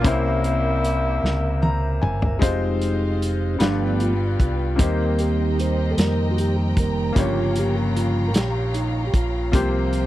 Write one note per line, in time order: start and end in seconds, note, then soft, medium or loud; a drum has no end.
0.00 2.36 A#3 medium
0.00 2.37 C#4 medium
0.00 2.38 A#4 medium
0.04 1.19 C2 medium
0.04 1.19 C3 medium
0.04 1.99 G3 medium
0.04 1.99 A#3 medium
0.04 2.38 E4 medium
0.04 2.03 E4 medium
0.04 2.38 A#4 medium
0.04 2.39 C5 medium
0.04 2.40 E5 medium
0.04 kick loud
0.04 closed hi-hat medium
0.44 closed hi-hat soft
0.84 closed hi-hat medium
1.23 1.98 C#2 medium
1.23 snare soft
1.62 1.99 A#5 medium
1.62 high tom medium
2.02 2.39 G1 medium
2.02 2.39 G#5 medium
2.02 mid tom medium
2.22 floor tom medium
2.39 3.56 F1 medium
2.39 3.59 G#3 medium
2.39 3.57 G#3 soft
2.39 3.60 C4 medium
2.39 3.60 D#4 medium
2.39 3.57 D#4 medium
2.39 3.59 F4 medium
2.39 3.56 G4 soft
2.39 3.59 C5 medium
2.39 3.61 C5 medium
2.39 3.59 D#5 medium
2.39 3.59 F5 medium
2.39 kick medium
2.39 closed hi-hat medium
2.81 closed hi-hat soft
3.22 closed hi-hat soft
3.54 3.61 C#4 medium
3.59 4.35 G1 medium
3.59 4.75 G2 medium
3.59 4.13 F3 soft
3.59 4.78 G3 medium
3.59 4.13 A3 soft
3.59 4.78 B3 soft
3.59 4.13 B3 medium
3.59 4.79 D4 soft
3.59 4.02 D4 medium
3.59 4.79 F4 soft
3.59 4.78 B4 medium
3.59 4.80 B4 medium
3.59 4.78 D5 medium
3.59 4.78 F5 medium
3.59 4.78 G5 medium
3.59 snare medium
3.59 closed hi-hat medium
4.00 4.39 F4 medium
4.00 closed hi-hat soft
4.40 4.76 C2 medium
4.40 4.81 F4 medium
4.40 kick medium
4.40 closed hi-hat soft
4.76 5.94 D#2 medium
4.76 5.93 D#3 medium
4.76 7.11 A#3 medium
4.76 7.11 C4 medium
4.76 7.12 D#4 soft
4.76 7.13 G4 medium
4.76 7.14 C5 medium
4.76 7.14 D#5 medium
4.76 9.50 G5 medium
4.76 10.06 A#5 medium
4.76 kick loud
4.76 closed hi-hat medium
4.80 7.13 D#3 soft
4.80 7.13 G3 soft
4.80 7.14 A#3 medium
4.80 5.21 A#4 medium
4.80 7.13 C5 medium
5.19 5.60 G4 medium
5.19 closed hi-hat soft
5.59 5.93 C5 medium
5.59 closed hi-hat soft
5.91 5.98 A4 medium
5.98 6.73 F2 medium
5.98 6.29 A#4 medium
5.98 snare medium
5.98 closed hi-hat medium
6.31 6.38 F#4 medium
6.38 6.57 G4 medium
6.38 closed hi-hat soft
6.77 7.13 F1 medium
6.77 7.19 A#4 medium
6.77 kick medium
6.77 closed hi-hat soft
7.13 8.35 G1 medium
7.13 8.31 G2 medium
7.13 9.48 A#3 medium
7.13 9.49 C#4 medium
7.13 9.49 F4 medium
7.13 9.51 C#5 medium
7.13 10.06 F5 medium
7.13 kick loud
7.13 closed hi-hat medium
7.17 8.32 C#3 medium
7.17 8.32 F3 soft
7.17 8.32 A#3 medium
7.17 7.59 F4 medium
7.17 9.50 G4 medium
7.17 9.51 C#5 medium
7.56 7.76 G4 medium
7.56 closed hi-hat soft
7.96 8.30 F4 medium
7.96 closed hi-hat soft
8.28 8.35 A#4 medium
8.34 9.10 A#1 medium
8.34 8.76 G4 medium
8.34 snare medium
8.34 closed hi-hat medium
8.74 9.05 D#4 medium
8.74 closed hi-hat soft
9.07 9.14 G4 soft
9.14 9.53 A#1 medium
9.14 9.55 F4 medium
9.14 kick medium
9.14 closed hi-hat soft
9.52 10.06 C2 medium
9.52 10.06 C3 medium
9.52 10.06 F3 soft
9.52 10.06 G3 soft
9.52 10.06 A#3 medium
9.52 10.06 C4 medium
9.52 10.06 F4 medium
9.52 10.06 G4 medium
9.52 10.06 C5 medium
9.52 10.06 G5 medium
9.52 kick loud
9.52 closed hi-hat medium
9.93 closed hi-hat soft